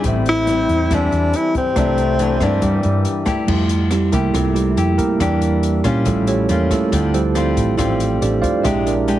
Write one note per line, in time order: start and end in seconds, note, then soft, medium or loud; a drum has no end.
0.00 0.64 A1 loud
0.00 0.44 G3 medium
0.00 0.44 C4 medium
0.00 0.44 E4 medium
0.00 1.72 G4 medium
0.00 1.73 A4 soft
0.00 kick medium
0.00 closed hi-hat soft
0.04 0.88 A2 medium
0.04 1.49 C4 loud
0.04 1.74 C5 soft
0.04 1.75 E5 medium
0.26 0.96 E4 loud
0.26 closed hi-hat soft
0.47 0.87 G3 medium
0.47 0.88 C4 medium
0.47 0.87 E4 medium
0.47 cross-stick medium
0.47 closed hi-hat soft
0.69 0.89 E2 medium
0.69 closed hi-hat soft
0.90 1.10 E2 medium
0.90 1.75 E3 medium
0.90 1.73 G3 medium
0.90 1.74 C4 medium
0.90 1.38 D4 medium
0.90 1.74 E4 medium
0.90 kick medium
0.90 cross-stick medium
0.90 closed hi-hat soft
1.12 1.32 E2 loud
1.12 closed hi-hat soft
1.33 1.56 E4 loud
1.33 closed hi-hat soft
1.55 3.03 C4 medium
1.55 kick soft
1.55 closed hi-hat soft
1.74 2.37 C2 loud
1.74 2.60 C3 medium
1.74 2.16 E3 medium
1.74 2.62 A3 loud
1.74 2.16 D4 medium
1.74 3.44 G4 soft
1.74 3.46 D5 soft
1.74 3.45 A#5 soft
1.74 kick medium
1.74 cross-stick medium
1.74 closed hi-hat soft
1.80 3.47 E5 medium
1.98 closed hi-hat soft
2.19 2.37 E3 medium
2.19 2.38 A#3 medium
2.19 2.37 D4 medium
2.19 closed hi-hat soft
2.40 2.61 G2 medium
2.40 3.24 E3 medium
2.40 3.24 A#3 medium
2.40 3.24 D4 medium
2.40 kick medium
2.40 cross-stick medium
2.40 closed hi-hat soft
2.61 3.46 G2 medium
2.61 2.82 G2 medium
2.61 3.26 G3 medium
2.61 kick medium
2.61 closed hi-hat soft
2.83 3.04 G2 medium
2.83 closed hi-hat soft
3.05 closed hi-hat soft
3.25 3.87 A3 medium
3.25 3.88 E4 medium
3.25 3.88 G4 medium
3.25 kick medium
3.25 cross-stick medium
3.25 closed hi-hat soft
3.47 4.09 F2 medium
3.47 4.32 F3 medium
3.47 3.76 G3 soft
3.47 3.76 A3 soft
3.47 3.77 E4 soft
3.47 kick medium
3.47 crash medium
3.69 closed hi-hat soft
3.91 4.11 G3 soft
3.91 4.13 C4 soft
3.91 4.11 E4 soft
3.91 4.12 G4 medium
3.91 cross-stick medium
3.91 closed hi-hat soft
4.12 4.33 C2 medium
4.12 4.32 G3 soft
4.12 4.74 A3 medium
4.12 4.32 A3 soft
4.12 4.34 A#3 medium
4.12 4.32 E4 soft
4.12 4.74 E4 medium
4.12 4.75 G4 medium
4.12 4.34 A#4 medium
4.12 kick medium
4.12 closed hi-hat soft
4.34 4.74 C2 loud
4.34 5.18 C3 medium
4.34 4.55 A3 soft
4.34 4.54 E4 soft
4.34 4.55 F4 soft
4.34 4.55 A4 medium
4.34 kick medium
4.34 cross-stick medium
4.34 closed hi-hat medium
4.54 4.96 G3 soft
4.54 4.96 C4 medium
4.54 4.96 E4 soft
4.54 4.95 G4 medium
4.54 closed hi-hat soft
4.77 4.97 F2 medium
4.77 5.17 A3 soft
4.77 5.17 E4 medium
4.77 5.17 G4 medium
4.77 closed hi-hat soft
4.98 5.19 A#3 medium
4.98 5.59 E4 medium
4.98 5.59 G4 medium
4.98 5.59 A#4 medium
4.98 kick medium
4.98 closed hi-hat soft
5.19 5.81 E2 medium
5.19 5.84 E3 medium
5.19 5.49 G3 soft
5.19 5.49 A#3 soft
5.19 5.82 A#3 soft
5.19 5.82 D4 medium
5.19 5.82 G4 medium
5.19 kick medium
5.19 cross-stick medium
5.19 closed hi-hat medium
5.42 closed hi-hat soft
5.63 closed hi-hat soft
5.84 6.05 A#2 medium
5.84 6.46 G3 medium
5.84 6.46 C#4 medium
5.84 6.46 F4 medium
5.84 kick soft
5.84 cross-stick medium
5.84 closed hi-hat soft
6.05 6.46 A1 loud
6.05 6.90 A2 medium
6.05 6.34 F3 soft
6.05 6.35 G3 soft
6.05 6.28 A3 soft
6.05 6.27 C#4 soft
6.05 6.28 E4 soft
6.05 6.28 F4 soft
6.05 6.26 A4 medium
6.05 kick medium
6.05 closed hi-hat medium
6.27 6.49 C#4 medium
6.27 6.49 G4 medium
6.27 6.49 A4 medium
6.27 6.49 C#5 medium
6.27 closed hi-hat soft
6.49 6.70 E2 medium
6.49 6.89 G3 medium
6.49 6.72 A#3 soft
6.49 6.89 C#4 soft
6.49 6.90 F4 medium
6.49 6.72 A#4 medium
6.49 closed hi-hat soft
6.71 7.12 A3 medium
6.71 7.12 E4 soft
6.71 7.12 F4 soft
6.71 7.12 A4 medium
6.71 kick soft
6.71 cross-stick medium
6.71 closed hi-hat soft
6.92 7.53 D2 loud
6.92 7.76 D3 medium
6.92 7.20 G3 medium
6.92 7.20 C4 medium
6.92 7.21 F4 medium
6.92 kick medium
6.92 closed hi-hat medium
7.13 7.42 F3 soft
7.13 7.43 G3 soft
7.13 7.75 C4 medium
7.13 7.43 E4 soft
7.13 7.75 G4 medium
7.13 7.75 A4 medium
7.13 7.75 C5 medium
7.13 closed hi-hat soft
7.35 7.75 G3 medium
7.35 7.75 C4 medium
7.35 7.75 F4 medium
7.35 cross-stick medium
7.35 closed hi-hat soft
7.57 7.77 A1 medium
7.57 kick medium
7.57 closed hi-hat soft
7.77 8.19 A1 medium
7.77 8.62 A2 medium
7.77 8.61 G3 medium
7.77 8.61 C4 medium
7.77 8.61 F4 medium
7.77 kick medium
7.77 cross-stick medium
7.77 closed hi-hat medium
8.00 closed hi-hat soft
8.22 8.42 A1 medium
8.22 8.43 D4 medium
8.22 8.43 G4 medium
8.22 8.43 A4 medium
8.22 8.41 D5 medium
8.22 closed hi-hat soft
8.42 8.64 F4 medium
8.42 8.64 C5 medium
8.42 8.63 D5 medium
8.42 8.63 F5 medium
8.42 kick medium
8.42 closed hi-hat soft
8.62 9.19 A#1 medium
8.62 9.19 A#2 medium
8.62 9.19 G#3 soft
8.62 8.92 G#3 medium
8.62 9.19 C4 soft
8.62 8.86 D4 soft
8.62 8.92 D4 medium
8.62 8.85 E4 soft
8.62 9.19 G4 soft
8.62 8.93 G4 medium
8.62 8.85 E5 medium
8.62 kick medium
8.62 cross-stick medium
8.62 closed hi-hat medium
8.86 9.19 D4 medium
8.86 9.19 G#4 medium
8.86 9.19 A#4 medium
8.86 9.19 D5 medium
8.86 closed hi-hat soft
9.08 9.19 G#3 soft
9.08 9.19 D4 medium
9.08 9.19 G4 medium
9.08 closed hi-hat soft